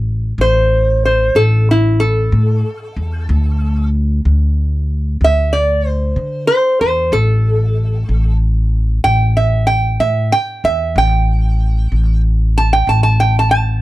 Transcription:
Already playing: A1
0.38 A1 C5
1.05 C5
1.35 A1 A4
1.71 E4
2.00 A4
2.32 A2
2.97 E2
3.29 D2
4.25 D2
5.21 D2 E5
5.53 D5
5.87 C5
6.16 D3
6.47 C5
6.81 E2 C5
7.12 A1 A4
8.09 A1
9.04 A1 G5
9.37 E5
9.67 G5
10.00 A2 E5
10.32 G5
10.64 E2 E5
10.96 A1 G5
11.92 A1
12.58 A5
12.73 G5
12.87 A1 A5
13.03 A5
13.20 G5
13.39 A5
13.51 A5

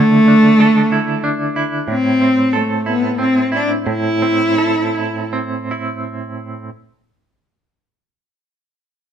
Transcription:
Already playing: D3 A3 D4 E4 A4
0.28 D4
0.60 A4
0.92 E4
1.24 D4
1.56 E4
1.88 A2 C4
2.21 C4
2.53 A3 A4
2.86 B3 E4
3.18 C4
3.52 D4 E4
3.87 A2 E4
4.22 C4
4.58 A4
4.95 E4
5.33 C4
5.71 E4

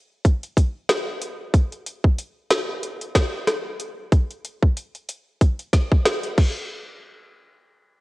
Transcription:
0.25 kick, closed hi-hat
0.43 closed hi-hat
0.57 kick, closed hi-hat
0.89 cross-stick, snare, closed hi-hat
1.22 closed hi-hat
1.54 kick, closed hi-hat
1.72 closed hi-hat
1.86 closed hi-hat
2.04 kick
2.18 closed hi-hat
2.50 cross-stick, snare, closed hi-hat
2.83 closed hi-hat
3.01 closed hi-hat
3.15 kick, cross-stick, snare, closed hi-hat
3.47 cross-stick, snare, closed hi-hat
3.80 closed hi-hat
4.12 kick, closed hi-hat
4.30 closed hi-hat
4.44 closed hi-hat
4.62 kick
4.77 closed hi-hat
4.95 closed hi-hat
5.09 closed hi-hat
5.41 kick, closed hi-hat
5.59 closed hi-hat
5.73 kick, snare, closed hi-hat
5.92 kick
6.05 cross-stick, snare, closed hi-hat
6.23 closed hi-hat
6.38 kick, crash

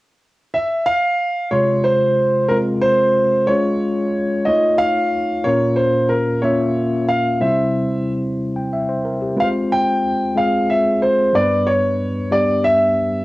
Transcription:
0.54 E5
0.86 F5
1.51 C3 G#3 F4 C#5 C6
1.84 C5
2.48 G#3 C4 F4 A#4
2.81 C5
3.47 G#3 C#4 F4 C#5
4.45 A3 D#4 F4 C#5 D#5
4.78 F5
5.44 A#2 A#3 C#4 F4 A#4 C#5
5.76 C5
6.09 A#4
6.42 A#3 C#4 F4 C#5 E5
7.08 F5
7.41 C3 G3 C4 E4 C5 E5
8.56 G5
8.73 E5
8.89 C5
9.05 A#4
9.22 G4
9.36 G#3 C4 F4 B4 F5
9.44 C5
9.72 G5
10.35 G#3 C4 F4 G#4 F5
10.70 E5
11.02 C5
11.33 G2 G3 B3 D4 A#4 D5
11.41 B4
11.67 C#5
12.31 G3 B3 D4 G4 D5
12.64 E5

